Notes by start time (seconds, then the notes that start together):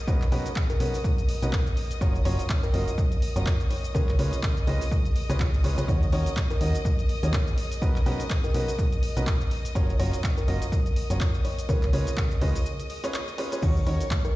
Already playing: D#5 D#6, downlifter
0.08 B1 C#4 D#4 F#4 A#4 B4, kick, cabasa
0.22 clap, cabasa
0.32 B1 C#4 D#4 F#4 G#4 A#4 B4, open hi-hat
0.46 closed hi-hat, cabasa
0.56 kick, clap, cabasa
0.70 A#4, closed hi-hat, cabasa
0.80 B1 C#4 D#4 F#4 A#4 B4, open hi-hat
0.94 open hi-hat, cabasa
1.04 kick, cabasa
1.18 closed hi-hat, cabasa
1.29 open hi-hat
1.42 B1 C#4 D#4 F#4 A#4 B4, closed hi-hat, cabasa
1.53 kick, clap, cabasa
1.67 closed hi-hat, cabasa
1.77 open hi-hat
1.91 closed hi-hat, cabasa
2.01 F#1 C#4 F4 F#4 A#4 C#5, kick, cabasa
2.15 cabasa
2.25 F#1 C#4 F4 F#4 A#4 C#5, open hi-hat
2.39 closed hi-hat, cabasa
2.50 kick, clap, cabasa
2.63 A#4, closed hi-hat, cabasa
2.74 F#1 C#4 F4 F#4 A#4 D#5, open hi-hat
2.88 closed hi-hat, cabasa
2.98 kick, cabasa
3.12 closed hi-hat, cabasa
3.22 open hi-hat
3.36 F#1 C#4 F4 F#4 A#4 C#5, closed hi-hat, cabasa
3.46 kick, clap, cabasa
3.60 closed hi-hat, cabasa
3.71 C#5, open hi-hat
3.84 closed hi-hat, cabasa
3.95 C#2 C#4 F4 G#4 A#4 B4 C#5, kick, cabasa
4.09 clap, cabasa
4.19 C#2 C#4 F4 G#4 B4 C#5, open hi-hat
4.33 closed hi-hat, cabasa
4.43 kick, clap, cabasa
4.57 closed hi-hat, cabasa
4.67 C#2 C#4 F4 G#4 B4 D#5, open hi-hat
4.81 open hi-hat, cabasa
4.91 kick, cabasa
5.05 closed hi-hat, cabasa
5.16 open hi-hat
5.30 C#2 C#4 F4 G#4 B4 C#5, closed hi-hat, cabasa
5.40 kick, clap, cabasa
5.54 closed hi-hat, cabasa
5.64 C#2 C#4 F4 G#4 B4 C#5, open hi-hat
5.78 C#2 C#4 F4 G#4 B4 C#5, closed hi-hat, cabasa
5.88 D#2 C#4 D#4 F#4 A#4 C#5, kick, cabasa
6.03 cabasa
6.12 D#2 C#4 D#4 F#4 A#4 C#5, open hi-hat
6.26 closed hi-hat, cabasa
6.37 kick, clap, cabasa
6.51 A#4, closed hi-hat, cabasa
6.61 D#2 C#4 D#4 F#4 A#4 D#5, open hi-hat
6.75 closed hi-hat, cabasa
6.85 kick, cabasa
6.99 closed hi-hat, cabasa
7.09 open hi-hat
7.23 D#2 C#4 D#4 F#4 G#4 A#4 C#5, closed hi-hat, cabasa
7.33 kick, clap, cabasa
7.47 closed hi-hat, cabasa
7.58 open hi-hat
7.72 closed hi-hat, cabasa
7.82 B1 C#4 D#4 F#4 A#4 B4, kick, cabasa
7.96 clap, cabasa
8.06 B1 C#4 D#4 F#4 G#4 A#4 B4, open hi-hat
8.20 closed hi-hat, cabasa
8.30 kick, clap, cabasa
8.44 A#4, closed hi-hat, cabasa
8.54 B1 C#4 D#4 F#4 A#4 B4, open hi-hat
8.68 open hi-hat, cabasa
8.79 kick, cabasa
8.92 closed hi-hat, cabasa
9.03 open hi-hat
9.17 B1 C#4 D#4 F#4 A#4 B4, closed hi-hat, cabasa
9.27 kick, clap, cabasa
9.41 closed hi-hat, cabasa
9.51 open hi-hat
9.65 closed hi-hat, cabasa
9.75 F#1 C#4 F4 F#4 A#4 C#5, kick, cabasa
9.90 cabasa
10.00 F#1 C#4 F4 F#4 A#4 C#5, open hi-hat
10.13 closed hi-hat, cabasa
10.24 kick, clap, cabasa
10.38 A#4, closed hi-hat, cabasa
10.48 F#1 C#4 F4 F#4 A#4 D#5, open hi-hat
10.62 closed hi-hat, cabasa
10.72 kick, cabasa
10.86 closed hi-hat, cabasa
10.96 open hi-hat
11.10 F#1 C#4 F4 F#4 A#4 C#5, closed hi-hat, cabasa
11.21 kick, clap, cabasa
11.34 closed hi-hat, cabasa
11.45 C#5, open hi-hat
11.59 closed hi-hat, cabasa
11.69 C#2 C#4 F4 G#4 A#4 B4 C#5, kick, cabasa
11.83 clap, closed hi-hat, cabasa
11.93 C#2 C#4 F4 G#4 B4 C#5, open hi-hat
12.07 closed hi-hat, cabasa
12.17 kick, clap, cabasa
12.31 closed hi-hat, cabasa
12.41 C#2 C#4 F4 G#4 B4 D#5, kick, open hi-hat
12.55 open hi-hat, cabasa
12.66 cabasa
12.80 closed hi-hat, cabasa
12.90 open hi-hat
13.04 C#4 F4 G#4 B4 C#5, closed hi-hat, cabasa
13.14 clap, cabasa
13.28 closed hi-hat, cabasa
13.38 C#4 F4 G#4 B4 C#5, open hi-hat
13.52 C#4 F4 G#4 B4 C#5, closed hi-hat, cabasa
13.62 D#2 C#4 D#4 F#4 A#4 C#5 C#6, kick, crash, cabasa
13.77 cabasa
13.87 D#2 C#4 D#4 F#4 A#4 C#5, open hi-hat
14.01 closed hi-hat, cabasa
14.11 kick, clap, cabasa
14.25 A#4, closed hi-hat, cabasa